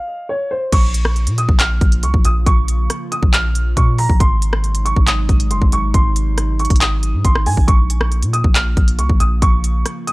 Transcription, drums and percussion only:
0.72 kick, closed hi-hat, crash
0.94 closed hi-hat
1.05 cross-stick
1.16 closed hi-hat
1.27 closed hi-hat
1.38 closed hi-hat
1.49 kick
1.59 clap, closed hi-hat
1.81 kick, closed hi-hat
1.92 closed hi-hat
2.03 closed hi-hat
2.14 kick
2.25 closed hi-hat
2.46 kick, closed hi-hat
2.68 closed hi-hat
2.90 cross-stick, closed hi-hat
3.12 closed hi-hat
3.23 kick
3.33 clap, closed hi-hat
3.55 closed hi-hat
3.77 kick, closed hi-hat
3.98 open hi-hat
4.10 kick
4.20 kick, closed hi-hat
4.42 closed hi-hat
4.53 cross-stick
4.64 closed hi-hat
4.75 closed hi-hat
4.86 closed hi-hat
4.96 kick
5.07 clap, closed hi-hat
5.29 kick, closed hi-hat
5.40 closed hi-hat
5.51 closed hi-hat
5.62 kick
5.72 closed hi-hat
5.94 kick, closed hi-hat
6.16 closed hi-hat
6.38 cross-stick, closed hi-hat
6.59 closed hi-hat
6.65 closed hi-hat
6.70 kick, closed hi-hat
6.76 closed hi-hat
6.81 clap, closed hi-hat
7.03 closed hi-hat
7.25 kick, closed hi-hat
7.35 cross-stick
7.46 open hi-hat
7.57 kick
7.68 kick, closed hi-hat
7.90 closed hi-hat
8.01 cross-stick
8.12 closed hi-hat
8.22 closed hi-hat
8.34 closed hi-hat
8.44 kick
8.55 clap, closed hi-hat
8.77 kick, closed hi-hat
8.88 closed hi-hat
8.99 closed hi-hat
9.09 kick
9.20 closed hi-hat
9.42 kick, closed hi-hat
9.64 closed hi-hat
9.86 cross-stick, closed hi-hat
10.07 closed hi-hat

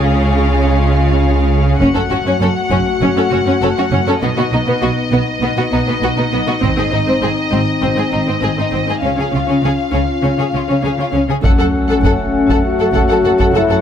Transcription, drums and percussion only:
1.80 taiko
2.71 taiko
6.63 taiko
11.44 taiko
12.05 taiko
12.50 taiko
12.94 taiko
13.39 taiko

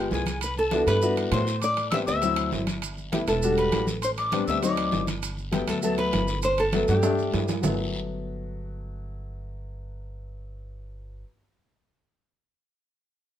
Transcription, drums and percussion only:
0.11 high conga, low timbale, short guiro, maracas
0.26 high conga, high timbale, short guiro, maracas
0.41 high conga, high timbale, long guiro, maracas
0.56 high conga, maracas
0.71 high conga, high timbale, low timbale, short guiro, maracas
0.87 high conga, high timbale, short guiro, maracas
1.01 high conga, long guiro, maracas
1.17 high conga, high timbale, maracas
1.32 high conga, high timbale, low timbale, short guiro, maracas
1.47 short guiro, maracas
1.62 high conga, high timbale, long guiro, maracas
1.77 high conga, high timbale, maracas
1.92 high conga, high timbale, low timbale, short guiro, maracas
2.07 high conga, short guiro, maracas
2.22 high conga, high timbale, long guiro, maracas
2.36 high conga, high timbale, maracas
2.52 high conga, low timbale, short guiro, maracas
2.67 high conga, high timbale, short guiro, maracas
2.82 high conga, high timbale, long guiro, maracas
2.97 high conga, maracas
3.12 high conga, high timbale, low timbale, short guiro, maracas
3.27 high conga, high timbale, short guiro, maracas
3.42 high conga, long guiro, maracas
3.57 high conga, high timbale, maracas
3.72 high conga, high timbale, low timbale, short guiro, maracas
3.87 high conga, short guiro, maracas
4.02 high conga, high timbale, long guiro, maracas
4.17 high conga, high timbale, maracas
4.32 high conga, high timbale, low timbale, short guiro, maracas
4.47 high conga, short guiro, maracas
4.62 high conga, high timbale, long guiro, maracas
4.77 high conga, high timbale, maracas
4.92 high conga, low timbale, short guiro, maracas
5.07 high conga, high timbale, short guiro, maracas
5.23 high conga, high timbale, maracas
5.38 high conga, maracas
5.53 high conga, high timbale, low timbale, short guiro, maracas
5.68 high conga, high timbale, short guiro, maracas
5.82 high conga, long guiro, maracas
5.98 high conga, high timbale, maracas
6.13 high conga, high timbale, low timbale, short guiro, maracas
6.28 short guiro, maracas
6.42 high conga, high timbale, maracas
6.58 high conga, high timbale, maracas
6.73 high conga, high timbale, low timbale, short guiro, maracas
6.88 high conga, short guiro, maracas
7.03 high conga, high timbale, long guiro, maracas
7.18 high conga, maracas
7.33 high conga, low timbale, short guiro, maracas
7.48 high conga, low timbale, short guiro, maracas
7.63 low conga, low timbale, long guiro, maracas

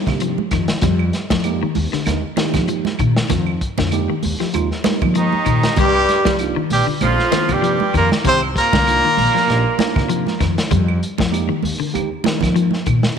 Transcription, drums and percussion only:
0.07 kick, snare, low conga, claves
0.20 closed hi-hat
0.38 high conga
0.51 kick, snare, closed hi-hat, claves
0.68 snare, closed hi-hat
0.81 kick, snare, closed hi-hat, low conga
0.99 claves
1.13 snare, closed hi-hat
1.30 kick, snare, high conga
1.44 closed hi-hat, claves
1.75 open hi-hat, high conga
1.93 snare
2.06 snare, closed hi-hat, claves
2.37 snare, closed hi-hat, high conga
2.54 kick, snare, closed hi-hat, low conga, claves
2.68 closed hi-hat
2.85 snare, high conga
2.99 kick, closed hi-hat, claves
3.17 snare
3.30 kick, snare, closed hi-hat, low conga
3.47 claves
3.61 kick, closed hi-hat
3.78 kick, snare, high conga
3.91 closed hi-hat, claves
4.23 open hi-hat, high conga
4.40 snare
4.54 closed hi-hat, claves
4.71 snare
4.84 snare, closed hi-hat, high conga
5.02 kick, low conga, claves
5.15 closed hi-hat
5.33 high conga
5.46 kick, closed hi-hat, claves
5.63 snare, closed hi-hat, high conga
5.77 kick, closed hi-hat, low conga
5.95 claves
6.09 snare, closed hi-hat
6.25 kick, snare, high conga
6.39 closed hi-hat, claves
6.70 open hi-hat, high conga
7.01 closed hi-hat, high conga, claves
7.19 snare
7.32 snare, closed hi-hat, high conga
7.49 kick, closed hi-hat, low conga, claves
7.64 closed hi-hat
7.80 high conga
7.94 kick, closed hi-hat, claves
8.12 snare, high conga
8.25 kick, closed hi-hat, low conga
8.43 claves
8.56 kick, closed hi-hat
8.73 kick, snare, high conga, low conga
8.87 closed hi-hat, claves
9.17 open hi-hat, high conga
9.36 snare
9.48 snare, closed hi-hat, claves
9.79 snare, closed hi-hat, high conga
9.96 kick, snare, low conga, claves
10.09 closed hi-hat
10.27 snare, high conga
10.40 kick, snare, closed hi-hat, claves
10.58 snare, closed hi-hat
10.71 kick, closed hi-hat, low conga
10.88 claves
11.03 closed hi-hat
11.18 kick, snare, high conga
11.34 closed hi-hat, claves
11.63 open hi-hat, high conga
11.95 closed hi-hat, claves
12.24 snare, closed hi-hat, high conga
12.41 kick, snare, closed hi-hat, low conga, claves
12.56 closed hi-hat
12.71 snare, high conga
12.86 kick, closed hi-hat, claves
13.03 snare, high conga

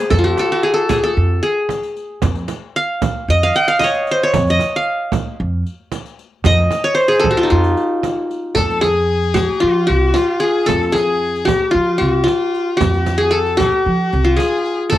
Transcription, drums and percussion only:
0.11 riq, frame drum
0.24 riq
0.37 riq, frame drum
0.89 riq, frame drum
1.44 riq
1.69 riq, frame drum
1.83 riq
1.97 riq
2.22 riq, frame drum
2.35 riq
2.48 riq, frame drum
3.02 riq, frame drum
3.54 riq
3.80 riq, frame drum
3.95 riq
4.07 riq
4.34 riq, frame drum
4.47 riq
4.59 riq, frame drum
5.12 riq, frame drum
5.66 riq
5.92 riq, frame drum
6.05 riq
6.19 riq
6.44 riq, frame drum
6.71 riq, frame drum
6.98 riq
7.11 riq
7.24 frame drum
7.51 riq
7.64 riq
7.77 riq
8.03 riq, frame drum
8.31 riq
8.55 riq, frame drum
8.70 riq
8.82 riq, frame drum
9.23 riq
9.35 riq, frame drum
9.90 riq
10.15 riq, frame drum
10.42 riq
10.68 riq, frame drum
10.83 riq
10.95 riq, frame drum
11.36 riq
11.48 riq, frame drum
12.01 riq
12.27 riq, frame drum
12.54 riq
12.81 riq, frame drum
12.94 riq
13.06 riq, frame drum
13.46 riq
13.59 riq, frame drum
14.13 riq
14.39 riq, frame drum
14.66 riq
14.92 riq, frame drum

